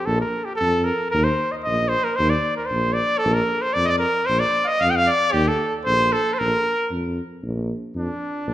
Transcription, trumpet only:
0.06 A4
0.20 A#4
0.45 G4
0.56 A4
0.85 A#4
1.11 A#4
1.24 C5
1.52 D#5
1.63 D#5
1.89 C5
2.04 A#4
2.16 C5
2.30 D5
2.56 A#4
2.66 C5
2.93 D5
3.18 A4
3.34 A#4
3.62 C5
3.73 D5
3.84 D5 D#5
3.99 A#4
4.26 C5
4.39 D5
4.64 D#5 F5
4.80 F5
4.90 G5
4.96 F5
5.07 D5
5.32 G4
5.48 A4
5.85 C5
6.13 A4
6.34 C5
6.39 A#4
7.97 D4
8.49 D4

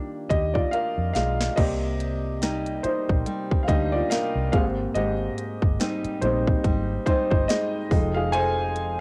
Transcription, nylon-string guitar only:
Already playing: D#3 G3 D4 F4
1.15 F4
1.57 C3
2.42 G3 A#3 D#4
3.26 G3
3.68 G3 A#3 D#4
4.11 D#4
4.53 G#2
4.95 G#2
5.80 G3 C4 D#4
6.64 G3
7.06 G3 C4 D#4
7.49 D#4
7.91 F2
8.33 F2

